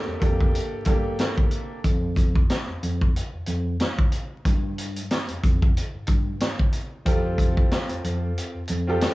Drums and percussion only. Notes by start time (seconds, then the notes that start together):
0.22 kick, closed hi-hat
0.40 kick
0.55 closed hi-hat
0.85 kick, closed hi-hat
1.19 snare, closed hi-hat
1.38 kick
1.51 closed hi-hat
1.84 kick, closed hi-hat
2.16 kick, closed hi-hat
2.35 kick
2.50 snare, closed hi-hat
2.83 closed hi-hat
3.01 kick
3.16 closed hi-hat
3.46 closed hi-hat
3.80 snare, closed hi-hat
3.99 kick
4.12 closed hi-hat
4.45 kick, closed hi-hat
4.78 closed hi-hat
4.96 closed hi-hat
5.11 snare, closed hi-hat
5.28 closed hi-hat
5.43 kick, closed hi-hat
5.62 kick
5.77 closed hi-hat
6.07 kick, closed hi-hat
6.40 snare, closed hi-hat
6.59 kick
6.73 closed hi-hat
7.06 kick, closed hi-hat
7.38 kick, closed hi-hat
7.57 kick
7.71 snare, closed hi-hat
7.89 closed hi-hat
8.04 closed hi-hat
8.38 closed hi-hat
8.68 closed hi-hat
9.01 snare, closed hi-hat